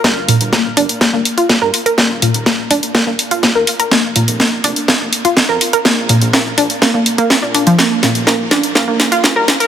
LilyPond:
<<
  \new Staff \with { instrumentName = "Synth pluck" } { \time 4/4 \key g \minor \tempo 4 = 124 bes16 r16 bes,16 r16 bes16 r16 d'16 r16 bes16 bes16 r16 f'16 r16 bes'16 r16 bes'16 | bes16 r16 bes,16 r16 bes16 r16 d'16 r16 bes16 bes16 r16 f'16 r16 bes'16 r16 bes'16 | bes16 r16 bes,16 r16 bes16 r16 d'16 r16 bes16 bes16 r16 f'16 r16 bes'16 r16 bes'16 | bes16 r16 bes,16 r16 bes16 r16 d'16 r16 bes16 bes16 r16 bes16 r16 d'16 d'16 f16 |
bes16 r16 bes,16 r16 bes16 r16 d'16 r16 bes16 bes16 r16 f'16 r16 bes'16 r16 bes'16 | }
  \new Staff \with { instrumentName = "Analog synth bass" } { \clef bass \time 4/4 \key g \minor g,,8. g,,8. g,,16 r8 g,,16 r8. g,16 r8 | ees,,8. ees,,8. ees,,16 r8 ees,,16 r8. ees,16 r8 | f,,8. f,,8. f,,16 r8 f,,16 r8. f,16 r8 | bes,,8. bes,,8. bes,,16 r8 f,,16 r8. bes,8. |
g,,8. g,,8. g,,16 r8 g,,16 r8. g,16 r8 | }
  \new DrumStaff \with { instrumentName = "Drums" } \drummode { \time 4/4 <hh bd sn>8 hho16 hh16 <hh bd sn>8 hho16 hh16 <hh bd sn>8 hho16 hh16 <hh bd sn>8 hho16 hh16 | <hh bd sn>8 hho16 hh16 <hh bd sn>8 hho16 hh16 <hh bd sn>8 hho16 hh16 <hh bd sn>8 hho16 hh16 | <hh bd sn>8 hho16 hh16 <hh bd sn>8 hho16 hh16 <hh bd sn>8 hho16 hh16 <hh bd sn>8 hho16 hh16 | <hh bd sn>8 hho16 hh16 <hh bd sn>8 hho16 hh16 <hh bd sn>8 hho16 hh16 <hh bd sn>8 hho16 hh16 |
<hh bd sn>8 <hho sn>16 hh16 <hh bd sn>8 <hho sn>16 hh16 <hh bd sn>8 <hho sn>16 hh16 <hh bd sn>8 <hho sn>16 hh16 | }
>>